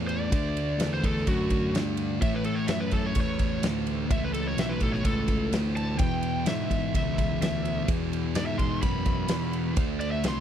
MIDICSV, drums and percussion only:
0, 0, Header, 1, 2, 480
1, 0, Start_track
1, 0, Tempo, 472813
1, 322, Time_signature, 4, 2, 24, 8
1, 10560, End_track
2, 0, Start_track
2, 0, Title_t, "Drums"
2, 90, Note_on_c, 9, 51, 61
2, 191, Note_off_c, 9, 51, 0
2, 327, Note_on_c, 9, 36, 108
2, 328, Note_on_c, 9, 51, 94
2, 429, Note_off_c, 9, 36, 0
2, 429, Note_off_c, 9, 51, 0
2, 575, Note_on_c, 9, 51, 71
2, 677, Note_off_c, 9, 51, 0
2, 808, Note_on_c, 9, 51, 94
2, 819, Note_on_c, 9, 38, 106
2, 910, Note_off_c, 9, 51, 0
2, 921, Note_off_c, 9, 38, 0
2, 1051, Note_on_c, 9, 36, 82
2, 1054, Note_on_c, 9, 51, 65
2, 1153, Note_off_c, 9, 36, 0
2, 1156, Note_off_c, 9, 51, 0
2, 1181, Note_on_c, 9, 38, 31
2, 1282, Note_off_c, 9, 38, 0
2, 1288, Note_on_c, 9, 51, 81
2, 1292, Note_on_c, 9, 36, 88
2, 1390, Note_off_c, 9, 51, 0
2, 1393, Note_off_c, 9, 36, 0
2, 1525, Note_on_c, 9, 51, 65
2, 1530, Note_on_c, 9, 36, 78
2, 1627, Note_off_c, 9, 51, 0
2, 1632, Note_off_c, 9, 36, 0
2, 1774, Note_on_c, 9, 51, 89
2, 1785, Note_on_c, 9, 38, 107
2, 1875, Note_off_c, 9, 51, 0
2, 1886, Note_off_c, 9, 38, 0
2, 2002, Note_on_c, 9, 51, 64
2, 2104, Note_off_c, 9, 51, 0
2, 2252, Note_on_c, 9, 51, 81
2, 2253, Note_on_c, 9, 36, 110
2, 2354, Note_off_c, 9, 36, 0
2, 2354, Note_off_c, 9, 51, 0
2, 2480, Note_on_c, 9, 51, 68
2, 2582, Note_off_c, 9, 51, 0
2, 2719, Note_on_c, 9, 51, 88
2, 2730, Note_on_c, 9, 38, 117
2, 2820, Note_off_c, 9, 51, 0
2, 2832, Note_off_c, 9, 38, 0
2, 2957, Note_on_c, 9, 51, 62
2, 2968, Note_on_c, 9, 36, 78
2, 3059, Note_off_c, 9, 51, 0
2, 3069, Note_off_c, 9, 36, 0
2, 3198, Note_on_c, 9, 51, 86
2, 3207, Note_on_c, 9, 36, 86
2, 3299, Note_off_c, 9, 51, 0
2, 3309, Note_off_c, 9, 36, 0
2, 3442, Note_on_c, 9, 51, 66
2, 3448, Note_on_c, 9, 36, 83
2, 3544, Note_off_c, 9, 51, 0
2, 3550, Note_off_c, 9, 36, 0
2, 3684, Note_on_c, 9, 51, 93
2, 3696, Note_on_c, 9, 38, 113
2, 3786, Note_off_c, 9, 51, 0
2, 3797, Note_off_c, 9, 38, 0
2, 3925, Note_on_c, 9, 51, 66
2, 4026, Note_off_c, 9, 51, 0
2, 4169, Note_on_c, 9, 36, 106
2, 4169, Note_on_c, 9, 51, 91
2, 4270, Note_off_c, 9, 36, 0
2, 4270, Note_off_c, 9, 51, 0
2, 4409, Note_on_c, 9, 51, 76
2, 4511, Note_off_c, 9, 51, 0
2, 4650, Note_on_c, 9, 51, 94
2, 4661, Note_on_c, 9, 38, 107
2, 4751, Note_off_c, 9, 51, 0
2, 4763, Note_off_c, 9, 38, 0
2, 4877, Note_on_c, 9, 51, 63
2, 4884, Note_on_c, 9, 36, 81
2, 4978, Note_off_c, 9, 51, 0
2, 4986, Note_off_c, 9, 36, 0
2, 5019, Note_on_c, 9, 38, 32
2, 5120, Note_off_c, 9, 38, 0
2, 5124, Note_on_c, 9, 51, 92
2, 5125, Note_on_c, 9, 36, 86
2, 5226, Note_off_c, 9, 51, 0
2, 5227, Note_off_c, 9, 36, 0
2, 5357, Note_on_c, 9, 51, 67
2, 5365, Note_on_c, 9, 36, 82
2, 5459, Note_off_c, 9, 51, 0
2, 5467, Note_off_c, 9, 36, 0
2, 5609, Note_on_c, 9, 51, 92
2, 5621, Note_on_c, 9, 38, 117
2, 5711, Note_off_c, 9, 51, 0
2, 5722, Note_off_c, 9, 38, 0
2, 5855, Note_on_c, 9, 51, 67
2, 5957, Note_off_c, 9, 51, 0
2, 6079, Note_on_c, 9, 51, 92
2, 6087, Note_on_c, 9, 36, 112
2, 6180, Note_off_c, 9, 51, 0
2, 6189, Note_off_c, 9, 36, 0
2, 6321, Note_on_c, 9, 51, 70
2, 6423, Note_off_c, 9, 51, 0
2, 6558, Note_on_c, 9, 51, 91
2, 6569, Note_on_c, 9, 38, 110
2, 6660, Note_off_c, 9, 51, 0
2, 6671, Note_off_c, 9, 38, 0
2, 6810, Note_on_c, 9, 36, 77
2, 6812, Note_on_c, 9, 51, 63
2, 6911, Note_off_c, 9, 36, 0
2, 6914, Note_off_c, 9, 51, 0
2, 7051, Note_on_c, 9, 36, 81
2, 7054, Note_on_c, 9, 51, 84
2, 7153, Note_off_c, 9, 36, 0
2, 7156, Note_off_c, 9, 51, 0
2, 7291, Note_on_c, 9, 36, 86
2, 7295, Note_on_c, 9, 51, 68
2, 7393, Note_off_c, 9, 36, 0
2, 7396, Note_off_c, 9, 51, 0
2, 7534, Note_on_c, 9, 51, 98
2, 7545, Note_on_c, 9, 38, 109
2, 7636, Note_off_c, 9, 51, 0
2, 7647, Note_off_c, 9, 38, 0
2, 7770, Note_on_c, 9, 51, 64
2, 7872, Note_off_c, 9, 51, 0
2, 8003, Note_on_c, 9, 51, 98
2, 8005, Note_on_c, 9, 36, 107
2, 8105, Note_off_c, 9, 51, 0
2, 8107, Note_off_c, 9, 36, 0
2, 8254, Note_on_c, 9, 51, 72
2, 8356, Note_off_c, 9, 51, 0
2, 8478, Note_on_c, 9, 51, 98
2, 8490, Note_on_c, 9, 38, 112
2, 8580, Note_off_c, 9, 51, 0
2, 8591, Note_off_c, 9, 38, 0
2, 8722, Note_on_c, 9, 51, 63
2, 8724, Note_on_c, 9, 36, 82
2, 8824, Note_off_c, 9, 51, 0
2, 8825, Note_off_c, 9, 36, 0
2, 8959, Note_on_c, 9, 51, 97
2, 8963, Note_on_c, 9, 36, 84
2, 9060, Note_off_c, 9, 51, 0
2, 9064, Note_off_c, 9, 36, 0
2, 9193, Note_on_c, 9, 51, 68
2, 9199, Note_on_c, 9, 36, 87
2, 9294, Note_off_c, 9, 51, 0
2, 9301, Note_off_c, 9, 36, 0
2, 9425, Note_on_c, 9, 51, 102
2, 9436, Note_on_c, 9, 38, 111
2, 9526, Note_off_c, 9, 51, 0
2, 9538, Note_off_c, 9, 38, 0
2, 9677, Note_on_c, 9, 51, 61
2, 9779, Note_off_c, 9, 51, 0
2, 9914, Note_on_c, 9, 51, 95
2, 9919, Note_on_c, 9, 36, 108
2, 10015, Note_off_c, 9, 51, 0
2, 10020, Note_off_c, 9, 36, 0
2, 10159, Note_on_c, 9, 51, 74
2, 10261, Note_off_c, 9, 51, 0
2, 10392, Note_on_c, 9, 51, 90
2, 10404, Note_on_c, 9, 38, 119
2, 10494, Note_off_c, 9, 51, 0
2, 10505, Note_off_c, 9, 38, 0
2, 10560, End_track
0, 0, End_of_file